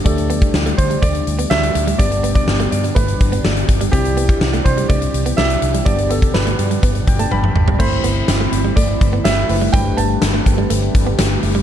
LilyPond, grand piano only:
\new Staff \with { instrumentName = "Grand piano" } { \time 4/4 \key g \major \tempo 4 = 124 a'4. c''8 d''4 e''4 | d''8. d''8. d''8 b'4 r4 | g'4 r8 c''8 d''4 e''4 | d''8 a'8 b'2~ b'8 r8 |
c''2 d''4 e''4 | g''8 a''2 r4. | }